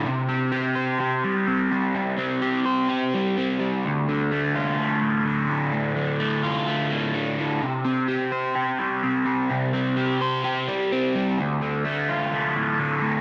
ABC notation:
X:1
M:4/4
L:1/8
Q:1/4=127
K:Cmix
V:1 name="Overdriven electric guitar"
C, C G c G G, C G, | C, C G c G G, C G, | D,, D, A, F A, A,, D, A,, | D,, D, A, F A, A,, D, A,, |
C, C G c G G, C G, | C, C G c G G, C G, | D,, D, A, F A, A,, D, A,, |]